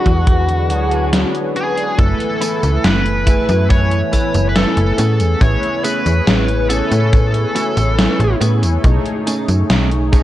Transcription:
Already playing: ambient pad D3 F#3 G#3 E4, analog polysynth D4 F#4 G#4 B4, lead electric guitar F#4
0.06 fm bass E2, kick, closed hi-hat
0.27 kick, closed hi-hat
0.49 closed hi-hat
0.69 fm bass D2, analog polysynth D4 F#4 G#4 C#5, closed hi-hat
0.90 analog polysynth D4 F#4 G#4 B4, closed hi-hat
1.13 snare, closed hi-hat
1.35 closed hi-hat
1.56 lead electric guitar G#4, closed hi-hat
1.77 closed hi-hat
1.97 fm bass F#1, ambient pad E3 A3 B3 G#5, analog polysynth A3 E4 B4 G#5, lead electric guitar A4, kick, closed hi-hat, tambourine
2.20 closed hi-hat
2.41 clean electric guitar A3 B3 E4 G#4, closed hi-hat, tambourine
2.63 fm bass C#2, closed hi-hat, tambourine
2.84 fm bass F#1, lead electric guitar B4, snare, closed hi-hat, tambourine
3.06 closed hi-hat
3.26 clean electric guitar A3 B3 E4 G#4, analog polysynth A3 E4 B4 G#5, kick, closed hi-hat, tambourine
3.49 fm bass F#2, closed hi-hat, tambourine
3.70 lead electric guitar C#5, kick, closed hi-hat, tambourine
3.91 closed hi-hat
4.12 clean electric guitar A3 B3 E4 A4, kick, closed hi-hat, tambourine
4.34 fm bass F#1, closed hi-hat, tambourine
4.49 lead electric guitar B4
4.56 lead electric guitar A4, snare, closed hi-hat, tambourine
4.77 fm bass F#1, closed hi-hat
4.98 fm bass A2, ambient pad C#3, clean electric guitar A3 B3 C#4 G#4, closed hi-hat, tambourine
5.20 fm bass E2, closed hi-hat, tambourine
5.40 fm bass A1, analog polysynth E4 G#4 B4 C#5, lead electric guitar C#5, kick, closed hi-hat, tambourine
5.63 closed hi-hat
5.84 clean electric guitar A3 B3 C#4 G#4, lead electric guitar B4, closed hi-hat, tambourine
6.06 fm bass E2, closed hi-hat, tambourine
6.27 fm bass A1, snare, closed hi-hat, tambourine
6.48 closed hi-hat
6.69 clean electric guitar A3 B3 C#4 G#4, analog polysynth E4 B4 C#5 G#5, lead electric guitar A4, closed hi-hat, tambourine
6.91 fm bass A2, closed hi-hat, tambourine
7.13 kick, closed hi-hat, tambourine
7.34 closed hi-hat
7.55 clean electric guitar A3 B3 C#4 F#4, closed hi-hat, tambourine
7.77 fm bass A1, closed hi-hat, tambourine
7.99 snare, closed hi-hat, tambourine
8.20 fm bass A1, closed hi-hat
8.41 fm bass A2, clean electric guitar A3 B3 C#4 G#4, closed hi-hat, tambourine
8.63 fm bass E2, closed hi-hat, tambourine
8.83 fm bass B1, analog polysynth A3 D#4 G#4 C#5, ambient pad D#4, kick, closed hi-hat, tambourine
9.06 closed hi-hat
9.27 clean electric guitar A3 C#4 D#4 G#4, closed hi-hat, tambourine
9.48 fm bass F#2, closed hi-hat, tambourine
9.70 fm bass B1, snare, closed hi-hat, tambourine
9.92 closed hi-hat
10.11 analog polysynth A3 D#4 G#4 C#5, clean electric guitar A3 C#4 D#4 G#4, kick, closed hi-hat, tambourine

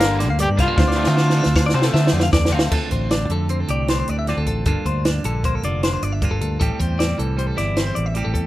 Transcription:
Already playing: fingered electric bass G1, clean electric guitar G2 A#3 D4 F4, trumpet A#4
0.00 overdriven electric guitar D3 G3 A#3 D4, clean electric guitar D3 F5, snare, closed hi-hat
0.19 clean electric guitar A#3 D5, snare, closed hi-hat
0.29 fingered electric bass D2, clean electric guitar F5
0.39 clean electric guitar G2 D5, trumpet G4, closed hi-hat
0.50 fingered electric bass G2
0.58 fingered electric bass C2, overdriven electric guitar D3 G3 A#3 D4, clean electric guitar G3 F5, trumpet F4, kick, snare, closed hi-hat
0.68 clean electric guitar A#3
0.78 fingered electric bass D2, clean electric guitar D2 D3 C4 D4 C5, kick, snare
0.88 fingered electric bass D2, clean electric guitar D5, snare
0.96 overdriven electric guitar D3 F3 A3 D4, clean electric guitar C4
1.04 fingered electric bass D3, snare
1.08 clean electric guitar E5
1.16 overdriven electric guitar D3 F3 A3 D4, clean electric guitar D4 C5, snare
1.30 snare
1.37 clean electric guitar D4 A4
1.43 fingered electric bass D2, snare
1.55 clean electric guitar D3 C5, kick, snare
1.66 clean electric guitar D5, snare
1.74 fingered electric bass C3, overdriven electric guitar D3 F3 A3 D4, clean electric guitar C4 C5
1.82 clean electric guitar A4, snare
1.93 overdriven electric guitar D3 F3 A3 D4, clean electric guitar D3 E5, fingered electric bass D3, snare
2.07 snare
2.13 fingered electric bass F2, clean electric guitar C4 D5
2.20 clean electric guitar F5, snare
2.33 clean electric guitar D2 D5, fingered electric bass E2, kick, snare
2.45 snare
2.51 fingered electric bass D2, overdriven electric guitar D3 F3 A3 D4, clean electric guitar F5
2.55 clean electric guitar C4
2.59 snare
2.71 clean electric guitar D2 C4 D4 F4 A4, fingered electric bass D2, kick, crash
2.91 fingered electric bass A1, clean electric guitar C5, kick, closed hi-hat
3.11 clean electric guitar D4 D5, snare, closed hi-hat
3.29 fingered electric bass F2, clean electric guitar D3 A4, closed hi-hat
3.49 clean electric guitar C4 C5, closed hi-hat
3.60 clean electric guitar A4
3.68 fingered electric bass C2, clean electric guitar A2 G4 D5, closed hi-hat
3.88 clean electric guitar D4 C5, snare, closed hi-hat
4.00 clean electric guitar C5
4.08 fingered electric bass D2, clean electric guitar D5, closed hi-hat
4.19 clean electric guitar E5
4.27 clean electric guitar D2 C4 D4 F4 D5, snare, closed hi-hat
4.37 fingered electric bass D2, clean electric guitar A4
4.46 fingered electric bass A1, clean electric guitar A4, kick, closed hi-hat
4.65 fingered electric bass G1, clean electric guitar G2 A#3 D4 F4 A4, kick, closed hi-hat
4.86 fingered electric bass D2, clean electric guitar C5, kick, closed hi-hat
5.05 clean electric guitar D4 D5, snare, closed hi-hat
5.24 fingered electric bass A#1, clean electric guitar D3 A4, closed hi-hat
5.44 clean electric guitar A#3 C5, kick, closed hi-hat
5.55 clean electric guitar A4
5.63 fingered electric bass F1, clean electric guitar D3 F4 D5, closed hi-hat
5.83 clean electric guitar D4 C5, snare, closed hi-hat
5.93 clean electric guitar C5
6.02 fingered electric bass G1, clean electric guitar D5, closed hi-hat
6.12 clean electric guitar E5
6.22 clean electric guitar G2 A#3 D4 F4 D5, kick, closed hi-hat
6.31 fingered electric bass G1, clean electric guitar A4
6.41 fingered electric bass D2, clean electric guitar A4, closed hi-hat
6.60 fingered electric bass A1, clean electric guitar A2 G3 C4 G4 A4, kick, closed hi-hat
6.79 fingered electric bass E2, clean electric guitar C5, kick, closed hi-hat
6.99 clean electric guitar C4 D5, snare, closed hi-hat
7.18 fingered electric bass C2, clean electric guitar E3 A4, closed hi-hat
7.37 clean electric guitar G3 C5, closed hi-hat
7.47 clean electric guitar A4
7.56 fingered electric bass G1, clean electric guitar E2 E4 D5, snare, closed hi-hat
7.76 clean electric guitar C4 C5, snare, closed hi-hat
7.87 clean electric guitar C5
7.95 fingered electric bass A1, clean electric guitar D5, closed hi-hat
8.06 clean electric guitar E5
8.14 clean electric guitar A2 G3 C4 G4 D5, closed hi-hat
8.24 fingered electric bass A1, clean electric guitar A4
8.34 fingered electric bass E2, clean electric guitar A4, kick, closed hi-hat

